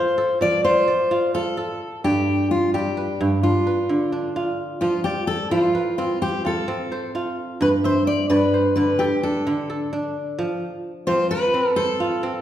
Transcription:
0.00 0.40 F3 medium
0.00 0.22 D4 medium
0.00 0.64 F4 medium
0.00 0.17 A4 medium
0.00 0.42 C5 medium
0.00 0.43 C5 medium
0.18 1.50 A4 medium
0.41 2.08 F3 medium
0.41 0.63 D5 loud
0.64 1.11 F4 medium
0.64 1.30 C5 medium
0.88 1.98 D5 medium
1.11 1.34 F4 medium
1.34 2.86 F4 medium
1.34 2.04 A4 medium
1.57 2.89 A4 medium
2.04 3.19 G2 medium
2.04 2.47 G4 medium
2.04 3.15 D5 medium
2.51 2.74 F4 medium
2.74 3.48 G3 medium
2.74 3.39 G4 medium
2.97 3.66 B4 medium
3.21 3.48 G2 medium
3.43 4.12 D4 medium
3.43 4.32 F4 medium
3.67 4.90 B4 medium
3.89 4.87 D3 medium
4.12 5.80 D4 medium
4.36 5.87 F4 medium
4.81 5.50 F3 medium
4.81 5.03 F4 medium
5.04 5.26 G4 medium
5.04 6.16 D5 medium
5.27 5.51 A4 medium
5.51 7.65 F3 medium
5.51 5.95 F4 medium
5.51 6.21 C5 medium
5.75 6.74 B4 medium
5.98 6.67 C4 medium
5.98 6.21 F4 medium
6.22 6.43 G4 medium
6.22 6.91 C5 medium
6.45 7.14 F4 medium
6.45 7.11 A4 medium
6.68 8.48 C4 medium
6.92 8.10 C5 medium
7.15 7.90 F4 medium
7.61 8.29 G2 medium
7.61 7.68 B4 medium
7.84 8.06 C5 medium
7.84 8.88 E5 medium
8.07 8.29 D5 medium
8.30 9.04 G2 medium
8.30 8.74 B4 medium
8.30 9.41 D5 medium
8.54 9.73 C5 medium
8.76 9.04 D3 medium
8.76 9.00 B4 medium
8.99 9.21 G4 medium
8.99 9.69 A4 medium
9.23 9.92 D4 medium
9.23 9.88 A4 medium
9.47 10.43 D3 medium
9.70 11.01 A4 medium
9.93 11.61 D4 medium
10.39 11.06 F3 medium
11.07 12.41 F3 medium
11.07 11.54 C4 medium
11.07 11.30 C5 loud
11.31 11.76 B4 loud
11.31 12.29 B4 medium
11.54 12.23 C4 medium
11.76 12.41 A4 loud
11.76 12.41 C5 medium
12.00 12.41 F4 medium
12.23 12.41 C4 medium

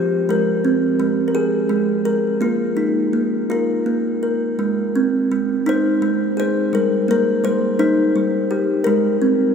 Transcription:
0.00 0.29 F3 medium
0.00 0.29 F4 medium
0.00 0.29 G4 medium
0.00 0.33 C5 medium
0.29 0.98 G#3 medium
0.29 1.27 A#4 medium
0.65 2.05 C4 medium
1.00 1.68 G#3 medium
1.28 1.34 A#4 medium
1.35 2.41 G#4 medium
1.69 2.41 G#3 medium
2.05 2.41 A#4 medium
2.41 3.12 A#3 medium
2.41 3.49 F4 medium
2.77 3.49 D#4 medium
3.13 3.49 A#3 medium
3.50 4.59 F4 medium
3.50 4.22 A#4 medium
3.86 4.59 A#3 medium
4.23 4.59 A#4 medium
4.59 5.30 G#3 medium
4.95 6.38 C4 medium
5.32 6.01 G#3 medium
5.66 6.73 D#4 medium
5.66 6.38 C5 medium
6.02 6.73 G#3 medium
6.37 6.73 G#4 medium
6.37 6.75 C5 medium
6.73 7.42 G3 medium
6.73 6.90 A#4 medium
7.08 8.50 A#3 medium
7.08 7.46 A#4 medium
7.44 8.14 G3 medium
7.44 7.78 C5 medium
7.79 8.85 D#4 medium
7.79 8.81 C5 medium
8.16 8.86 G3 medium
8.51 8.86 G4 medium
8.84 9.55 G#3 medium
8.84 9.55 A#4 medium
9.22 9.55 C4 medium

